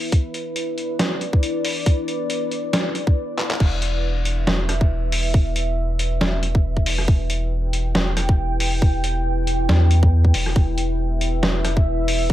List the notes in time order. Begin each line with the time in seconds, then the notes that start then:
Already playing: E4 B4
0.12 E1 D5, kick, closed hi-hat
0.34 closed hi-hat
0.56 closed hi-hat
0.78 closed hi-hat
0.99 snare, closed hi-hat
1.21 closed hi-hat
1.33 kick
1.43 closed hi-hat
1.65 open hi-hat
1.86 E1, kick, closed hi-hat
2.08 closed hi-hat
2.30 closed hi-hat
2.51 closed hi-hat
2.73 B1, snare, closed hi-hat
2.95 closed hi-hat
3.07 kick
3.39 clap
3.51 clap
3.60 E1 E4 B4 E5, kick, crash
3.82 closed hi-hat
4.25 closed hi-hat
4.47 E1, snare
4.69 cross-stick, closed hi-hat
4.81 kick
5.12 open hi-hat
5.34 E1, kick
5.56 closed hi-hat
5.99 closed hi-hat
6.21 E1, snare
6.43 closed hi-hat
6.55 kick
6.77 kick
6.86 open hi-hat
6.98 cross-stick
7.08 E1 G5, kick
7.30 closed hi-hat
7.73 closed hi-hat
7.95 E1, snare
8.17 cross-stick, closed hi-hat
8.29 kick
8.60 open hi-hat
8.82 E1, kick
9.04 closed hi-hat
9.47 closed hi-hat
9.69 E2, snare
9.91 closed hi-hat
10.03 kick
10.25 kick
10.34 E1, open hi-hat
10.46 cross-stick
10.56 E1 E5, kick
10.78 closed hi-hat
11.21 closed hi-hat
11.43 E1, snare
11.65 cross-stick, closed hi-hat
11.77 kick
12.08 open hi-hat
12.30 E1, kick